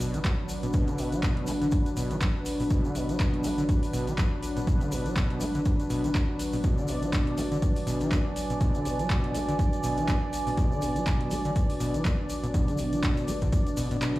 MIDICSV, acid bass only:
0, 0, Header, 1, 2, 480
1, 0, Start_track
1, 0, Tempo, 491803
1, 720, Time_signature, 4, 2, 24, 8
1, 13853, End_track
2, 0, Start_track
2, 0, Title_t, "Acid bass"
2, 0, Program_c, 0, 38
2, 1, Note_on_c, 0, 47, 75
2, 138, Note_on_c, 0, 52, 78
2, 153, Note_off_c, 0, 47, 0
2, 194, Note_off_c, 0, 52, 0
2, 241, Note_on_c, 0, 54, 84
2, 316, Note_off_c, 0, 54, 0
2, 618, Note_on_c, 0, 47, 76
2, 651, Note_off_c, 0, 47, 0
2, 721, Note_on_c, 0, 47, 103
2, 857, Note_on_c, 0, 50, 109
2, 872, Note_off_c, 0, 47, 0
2, 960, Note_on_c, 0, 47, 76
2, 975, Note_off_c, 0, 50, 0
2, 1098, Note_on_c, 0, 54, 78
2, 1112, Note_off_c, 0, 47, 0
2, 1183, Note_off_c, 0, 54, 0
2, 1201, Note_on_c, 0, 47, 86
2, 1441, Note_on_c, 0, 59, 74
2, 1455, Note_off_c, 0, 47, 0
2, 1486, Note_off_c, 0, 59, 0
2, 1577, Note_on_c, 0, 50, 98
2, 1634, Note_off_c, 0, 50, 0
2, 1921, Note_on_c, 0, 47, 78
2, 2058, Note_on_c, 0, 52, 77
2, 2073, Note_off_c, 0, 47, 0
2, 2115, Note_off_c, 0, 52, 0
2, 2161, Note_on_c, 0, 54, 80
2, 2236, Note_off_c, 0, 54, 0
2, 2538, Note_on_c, 0, 47, 76
2, 2572, Note_off_c, 0, 47, 0
2, 2641, Note_on_c, 0, 47, 100
2, 2777, Note_on_c, 0, 50, 104
2, 2792, Note_off_c, 0, 47, 0
2, 2880, Note_on_c, 0, 47, 79
2, 2895, Note_off_c, 0, 50, 0
2, 3017, Note_on_c, 0, 54, 81
2, 3032, Note_off_c, 0, 47, 0
2, 3102, Note_off_c, 0, 54, 0
2, 3120, Note_on_c, 0, 47, 85
2, 3360, Note_on_c, 0, 59, 69
2, 3374, Note_off_c, 0, 47, 0
2, 3405, Note_off_c, 0, 59, 0
2, 3497, Note_on_c, 0, 50, 92
2, 3554, Note_off_c, 0, 50, 0
2, 3840, Note_on_c, 0, 47, 78
2, 3977, Note_on_c, 0, 52, 74
2, 3992, Note_off_c, 0, 47, 0
2, 4034, Note_off_c, 0, 52, 0
2, 4081, Note_on_c, 0, 54, 80
2, 4156, Note_off_c, 0, 54, 0
2, 4457, Note_on_c, 0, 47, 74
2, 4491, Note_off_c, 0, 47, 0
2, 4560, Note_on_c, 0, 47, 100
2, 4696, Note_on_c, 0, 50, 102
2, 4711, Note_off_c, 0, 47, 0
2, 4800, Note_on_c, 0, 47, 76
2, 4815, Note_off_c, 0, 50, 0
2, 4936, Note_on_c, 0, 54, 78
2, 4951, Note_off_c, 0, 47, 0
2, 5022, Note_off_c, 0, 54, 0
2, 5040, Note_on_c, 0, 47, 82
2, 5280, Note_on_c, 0, 59, 75
2, 5295, Note_off_c, 0, 47, 0
2, 5326, Note_off_c, 0, 59, 0
2, 5417, Note_on_c, 0, 50, 95
2, 5474, Note_off_c, 0, 50, 0
2, 5760, Note_on_c, 0, 47, 76
2, 5897, Note_on_c, 0, 52, 75
2, 5912, Note_off_c, 0, 47, 0
2, 5954, Note_off_c, 0, 52, 0
2, 6000, Note_on_c, 0, 54, 84
2, 6076, Note_off_c, 0, 54, 0
2, 6377, Note_on_c, 0, 47, 75
2, 6411, Note_off_c, 0, 47, 0
2, 6480, Note_on_c, 0, 47, 100
2, 6617, Note_on_c, 0, 50, 110
2, 6631, Note_off_c, 0, 47, 0
2, 6721, Note_on_c, 0, 47, 76
2, 6735, Note_off_c, 0, 50, 0
2, 6857, Note_on_c, 0, 54, 78
2, 6872, Note_off_c, 0, 47, 0
2, 6942, Note_off_c, 0, 54, 0
2, 6961, Note_on_c, 0, 47, 83
2, 7201, Note_on_c, 0, 59, 72
2, 7215, Note_off_c, 0, 47, 0
2, 7246, Note_off_c, 0, 59, 0
2, 7337, Note_on_c, 0, 50, 101
2, 7394, Note_off_c, 0, 50, 0
2, 7680, Note_on_c, 0, 47, 79
2, 7817, Note_on_c, 0, 52, 80
2, 7832, Note_off_c, 0, 47, 0
2, 7920, Note_on_c, 0, 59, 84
2, 7935, Note_off_c, 0, 52, 0
2, 7996, Note_off_c, 0, 59, 0
2, 8297, Note_on_c, 0, 47, 77
2, 8331, Note_off_c, 0, 47, 0
2, 8401, Note_on_c, 0, 47, 99
2, 8537, Note_on_c, 0, 50, 104
2, 8552, Note_off_c, 0, 47, 0
2, 8641, Note_on_c, 0, 47, 75
2, 8655, Note_off_c, 0, 50, 0
2, 8777, Note_on_c, 0, 54, 80
2, 8792, Note_off_c, 0, 47, 0
2, 8862, Note_off_c, 0, 54, 0
2, 8880, Note_on_c, 0, 47, 82
2, 9121, Note_on_c, 0, 59, 75
2, 9135, Note_off_c, 0, 47, 0
2, 9166, Note_off_c, 0, 59, 0
2, 9258, Note_on_c, 0, 50, 95
2, 9314, Note_off_c, 0, 50, 0
2, 9601, Note_on_c, 0, 47, 79
2, 9738, Note_on_c, 0, 52, 78
2, 9753, Note_off_c, 0, 47, 0
2, 9842, Note_on_c, 0, 59, 84
2, 9856, Note_off_c, 0, 52, 0
2, 9916, Note_off_c, 0, 59, 0
2, 10218, Note_on_c, 0, 47, 82
2, 10252, Note_off_c, 0, 47, 0
2, 10321, Note_on_c, 0, 47, 98
2, 10458, Note_on_c, 0, 50, 100
2, 10473, Note_off_c, 0, 47, 0
2, 10562, Note_on_c, 0, 47, 75
2, 10576, Note_off_c, 0, 50, 0
2, 10698, Note_on_c, 0, 54, 75
2, 10712, Note_off_c, 0, 47, 0
2, 10783, Note_off_c, 0, 54, 0
2, 10801, Note_on_c, 0, 47, 84
2, 11040, Note_on_c, 0, 59, 73
2, 11055, Note_off_c, 0, 47, 0
2, 11086, Note_off_c, 0, 59, 0
2, 11178, Note_on_c, 0, 50, 97
2, 11234, Note_off_c, 0, 50, 0
2, 11521, Note_on_c, 0, 47, 81
2, 11657, Note_on_c, 0, 52, 79
2, 11672, Note_off_c, 0, 47, 0
2, 11761, Note_on_c, 0, 59, 84
2, 11775, Note_off_c, 0, 52, 0
2, 11836, Note_off_c, 0, 59, 0
2, 12137, Note_on_c, 0, 47, 80
2, 12171, Note_off_c, 0, 47, 0
2, 12240, Note_on_c, 0, 47, 97
2, 12377, Note_on_c, 0, 50, 107
2, 12392, Note_off_c, 0, 47, 0
2, 12481, Note_on_c, 0, 47, 79
2, 12496, Note_off_c, 0, 50, 0
2, 12617, Note_on_c, 0, 54, 76
2, 12632, Note_off_c, 0, 47, 0
2, 12702, Note_off_c, 0, 54, 0
2, 12721, Note_on_c, 0, 47, 79
2, 12961, Note_on_c, 0, 59, 72
2, 12975, Note_off_c, 0, 47, 0
2, 13006, Note_off_c, 0, 59, 0
2, 13097, Note_on_c, 0, 50, 94
2, 13154, Note_off_c, 0, 50, 0
2, 13441, Note_on_c, 0, 47, 79
2, 13553, Note_off_c, 0, 47, 0
2, 13578, Note_on_c, 0, 47, 106
2, 13634, Note_off_c, 0, 47, 0
2, 13681, Note_on_c, 0, 47, 84
2, 13794, Note_off_c, 0, 47, 0
2, 13817, Note_on_c, 0, 49, 79
2, 13853, Note_off_c, 0, 49, 0
2, 13853, End_track
0, 0, End_of_file